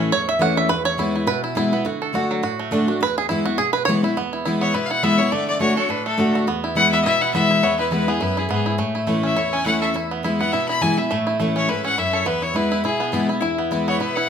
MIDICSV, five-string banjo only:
0, 0, Header, 1, 2, 480
1, 0, Start_track
1, 0, Tempo, 289157
1, 1159, Time_signature, 4, 2, 24, 8
1, 23721, End_track
2, 0, Start_track
2, 0, Title_t, "Five-string banjo"
2, 0, Program_c, 0, 105
2, 0, Note_on_c, 0, 52, 59
2, 0, Note_on_c, 0, 61, 55
2, 0, Note_on_c, 0, 64, 64
2, 0, Note_on_c, 0, 69, 60
2, 205, Note_on_c, 0, 73, 106
2, 416, Note_off_c, 0, 69, 0
2, 469, Note_off_c, 0, 61, 0
2, 476, Note_off_c, 0, 73, 0
2, 476, Note_on_c, 0, 76, 99
2, 685, Note_off_c, 0, 64, 0
2, 691, Note_off_c, 0, 76, 0
2, 692, Note_on_c, 0, 78, 100
2, 742, Note_off_c, 0, 52, 0
2, 952, Note_on_c, 0, 76, 100
2, 959, Note_off_c, 0, 78, 0
2, 1148, Note_off_c, 0, 76, 0
2, 1150, Note_on_c, 0, 71, 101
2, 1408, Note_off_c, 0, 71, 0
2, 1415, Note_on_c, 0, 73, 100
2, 1643, Note_on_c, 0, 64, 59
2, 1898, Note_off_c, 0, 64, 0
2, 1918, Note_on_c, 0, 64, 57
2, 2115, Note_on_c, 0, 71, 95
2, 2133, Note_off_c, 0, 73, 0
2, 2365, Note_off_c, 0, 64, 0
2, 2379, Note_off_c, 0, 71, 0
2, 2385, Note_on_c, 0, 64, 60
2, 2585, Note_off_c, 0, 64, 0
2, 2605, Note_on_c, 0, 64, 78
2, 2869, Note_on_c, 0, 59, 63
2, 3078, Note_off_c, 0, 59, 0
2, 3086, Note_on_c, 0, 66, 59
2, 3292, Note_off_c, 0, 64, 0
2, 3349, Note_on_c, 0, 69, 58
2, 3549, Note_off_c, 0, 66, 0
2, 3569, Note_on_c, 0, 66, 61
2, 3833, Note_on_c, 0, 54, 58
2, 3994, Note_off_c, 0, 69, 0
2, 4021, Note_off_c, 0, 66, 0
2, 4041, Note_on_c, 0, 66, 64
2, 4307, Note_on_c, 0, 57, 58
2, 4475, Note_off_c, 0, 54, 0
2, 4516, Note_on_c, 0, 62, 66
2, 4727, Note_off_c, 0, 66, 0
2, 4784, Note_on_c, 0, 66, 57
2, 4952, Note_off_c, 0, 57, 0
2, 4992, Note_off_c, 0, 62, 0
2, 4993, Note_off_c, 0, 66, 0
2, 5024, Note_on_c, 0, 71, 98
2, 5254, Note_off_c, 0, 71, 0
2, 5275, Note_on_c, 0, 68, 97
2, 5454, Note_off_c, 0, 68, 0
2, 5460, Note_on_c, 0, 64, 78
2, 5735, Note_on_c, 0, 66, 89
2, 5737, Note_off_c, 0, 64, 0
2, 5942, Note_on_c, 0, 68, 101
2, 5955, Note_off_c, 0, 66, 0
2, 6184, Note_off_c, 0, 68, 0
2, 6191, Note_on_c, 0, 71, 105
2, 6387, Note_off_c, 0, 71, 0
2, 6394, Note_on_c, 0, 73, 99
2, 6700, Note_off_c, 0, 73, 0
2, 6706, Note_on_c, 0, 64, 64
2, 6913, Note_off_c, 0, 64, 0
2, 6925, Note_on_c, 0, 59, 70
2, 7186, Note_on_c, 0, 64, 54
2, 7375, Note_off_c, 0, 64, 0
2, 7395, Note_on_c, 0, 64, 62
2, 7607, Note_off_c, 0, 59, 0
2, 7658, Note_on_c, 0, 59, 64
2, 7857, Note_off_c, 0, 64, 0
2, 7877, Note_on_c, 0, 64, 65
2, 8125, Note_off_c, 0, 64, 0
2, 8145, Note_on_c, 0, 64, 60
2, 8305, Note_off_c, 0, 59, 0
2, 8357, Note_on_c, 0, 59, 68
2, 8603, Note_off_c, 0, 64, 0
2, 8623, Note_on_c, 0, 64, 60
2, 8825, Note_off_c, 0, 59, 0
2, 8831, Note_off_c, 0, 64, 0
2, 8831, Note_on_c, 0, 57, 71
2, 9307, Note_on_c, 0, 62, 62
2, 9520, Note_off_c, 0, 57, 0
2, 9581, Note_on_c, 0, 69, 58
2, 9773, Note_off_c, 0, 62, 0
2, 9793, Note_on_c, 0, 62, 66
2, 10060, Note_on_c, 0, 57, 59
2, 10226, Note_off_c, 0, 69, 0
2, 10259, Note_off_c, 0, 62, 0
2, 10279, Note_on_c, 0, 62, 57
2, 10545, Note_on_c, 0, 66, 60
2, 10706, Note_off_c, 0, 57, 0
2, 10751, Note_off_c, 0, 62, 0
2, 10751, Note_off_c, 0, 66, 0
2, 10753, Note_on_c, 0, 59, 75
2, 11019, Note_on_c, 0, 64, 57
2, 11236, Note_off_c, 0, 64, 0
2, 11236, Note_on_c, 0, 64, 55
2, 11441, Note_off_c, 0, 59, 0
2, 11510, Note_on_c, 0, 59, 74
2, 11716, Note_off_c, 0, 64, 0
2, 11723, Note_on_c, 0, 64, 65
2, 11983, Note_off_c, 0, 64, 0
2, 11983, Note_on_c, 0, 64, 56
2, 12151, Note_off_c, 0, 59, 0
2, 12197, Note_on_c, 0, 59, 69
2, 12456, Note_off_c, 0, 64, 0
2, 12462, Note_on_c, 0, 64, 57
2, 12650, Note_off_c, 0, 59, 0
2, 12670, Note_on_c, 0, 59, 76
2, 12927, Note_off_c, 0, 64, 0
2, 12934, Note_on_c, 0, 64, 57
2, 13147, Note_off_c, 0, 64, 0
2, 13147, Note_on_c, 0, 64, 53
2, 13359, Note_off_c, 0, 59, 0
2, 13415, Note_on_c, 0, 59, 70
2, 13617, Note_off_c, 0, 64, 0
2, 13623, Note_on_c, 0, 64, 63
2, 13898, Note_off_c, 0, 64, 0
2, 13898, Note_on_c, 0, 64, 55
2, 14064, Note_off_c, 0, 59, 0
2, 14119, Note_on_c, 0, 59, 72
2, 14368, Note_off_c, 0, 64, 0
2, 14375, Note_on_c, 0, 64, 54
2, 14579, Note_off_c, 0, 59, 0
2, 14586, Note_on_c, 0, 57, 69
2, 14856, Note_off_c, 0, 64, 0
2, 14856, Note_on_c, 0, 64, 55
2, 15039, Note_off_c, 0, 57, 0
2, 15059, Note_on_c, 0, 57, 55
2, 15328, Note_on_c, 0, 61, 57
2, 15538, Note_off_c, 0, 64, 0
2, 15545, Note_on_c, 0, 64, 63
2, 15755, Note_off_c, 0, 57, 0
2, 15798, Note_off_c, 0, 61, 0
2, 15817, Note_on_c, 0, 61, 59
2, 16031, Note_off_c, 0, 64, 0
2, 16038, Note_on_c, 0, 64, 57
2, 16301, Note_on_c, 0, 69, 54
2, 16467, Note_off_c, 0, 61, 0
2, 16511, Note_off_c, 0, 69, 0
2, 16521, Note_off_c, 0, 64, 0
2, 16527, Note_on_c, 0, 64, 62
2, 16788, Note_on_c, 0, 59, 56
2, 16998, Note_off_c, 0, 64, 0
2, 17005, Note_on_c, 0, 64, 58
2, 17253, Note_off_c, 0, 59, 0
2, 17273, Note_on_c, 0, 59, 66
2, 17476, Note_off_c, 0, 64, 0
2, 17483, Note_on_c, 0, 64, 65
2, 17744, Note_off_c, 0, 64, 0
2, 17751, Note_on_c, 0, 64, 60
2, 17915, Note_off_c, 0, 59, 0
2, 17962, Note_off_c, 0, 64, 0
2, 17962, Note_on_c, 0, 64, 58
2, 18230, Note_off_c, 0, 64, 0
2, 18230, Note_on_c, 0, 64, 57
2, 18436, Note_on_c, 0, 57, 75
2, 18697, Note_off_c, 0, 64, 0
2, 18704, Note_on_c, 0, 64, 57
2, 18897, Note_off_c, 0, 57, 0
2, 18917, Note_on_c, 0, 57, 57
2, 19186, Note_on_c, 0, 61, 60
2, 19394, Note_off_c, 0, 64, 0
2, 19400, Note_on_c, 0, 64, 66
2, 19607, Note_off_c, 0, 57, 0
2, 19642, Note_off_c, 0, 61, 0
2, 19662, Note_on_c, 0, 61, 59
2, 19879, Note_off_c, 0, 64, 0
2, 19886, Note_on_c, 0, 64, 62
2, 20141, Note_on_c, 0, 69, 55
2, 20312, Note_off_c, 0, 61, 0
2, 20353, Note_off_c, 0, 69, 0
2, 20355, Note_on_c, 0, 59, 77
2, 20614, Note_off_c, 0, 64, 0
2, 20620, Note_on_c, 0, 64, 54
2, 20826, Note_off_c, 0, 64, 0
2, 20846, Note_on_c, 0, 64, 59
2, 21047, Note_off_c, 0, 59, 0
2, 21089, Note_off_c, 0, 64, 0
2, 21109, Note_on_c, 0, 64, 57
2, 21308, Note_off_c, 0, 64, 0
2, 21328, Note_on_c, 0, 64, 63
2, 21581, Note_on_c, 0, 59, 60
2, 21777, Note_off_c, 0, 64, 0
2, 21797, Note_on_c, 0, 64, 60
2, 22047, Note_off_c, 0, 64, 0
2, 22067, Note_on_c, 0, 64, 56
2, 22233, Note_off_c, 0, 59, 0
2, 22258, Note_off_c, 0, 64, 0
2, 22278, Note_on_c, 0, 64, 61
2, 22550, Note_on_c, 0, 59, 57
2, 22750, Note_off_c, 0, 64, 0
2, 22770, Note_on_c, 0, 64, 59
2, 23019, Note_off_c, 0, 59, 0
2, 23038, Note_on_c, 0, 59, 69
2, 23230, Note_off_c, 0, 64, 0
2, 23250, Note_on_c, 0, 64, 60
2, 23500, Note_off_c, 0, 64, 0
2, 23520, Note_on_c, 0, 64, 55
2, 23682, Note_off_c, 0, 59, 0
2, 23710, Note_off_c, 0, 64, 0
2, 23721, End_track
0, 0, End_of_file